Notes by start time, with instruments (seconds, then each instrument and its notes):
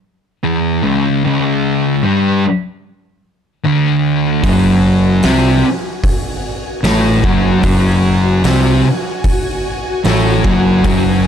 0.44 distorted electric guitar E2 E3
0.83 distorted electric guitar C#2 C#3
1.24 distorted electric guitar C#2 C#3
2.03 distorted electric guitar G2 G3
3.64 distorted electric guitar D2 D3
4.43 fingered electric bass F#1, distorted electric guitar F#2 F#3, string machine F#4 G#5, kick, open hi-hat
5.23 fingered electric bass C2, distorted electric guitar C3 C4, snare, open hi-hat
6.04 kick, open hi-hat
6.83 fingered electric bass A1, distorted electric guitar A2 A3, snare, open hi-hat
7.23 fingered electric bass F#1, distorted electric guitar F#2 F#3, kick
7.62 fingered electric bass F#1, distorted electric guitar F#2 F#3, kick, open hi-hat
8.44 fingered electric bass C2, distorted electric guitar C3 C4, snare, open hi-hat
9.24 kick, open hi-hat
10.05 fingered electric bass A1, distorted electric guitar A2 A3, snare, open hi-hat
10.45 fingered electric bass F#1, distorted electric guitar F#2 F#3, kick
10.84 fingered electric bass F#1, distorted electric guitar F#2 F#3, string machine B4, kick, open hi-hat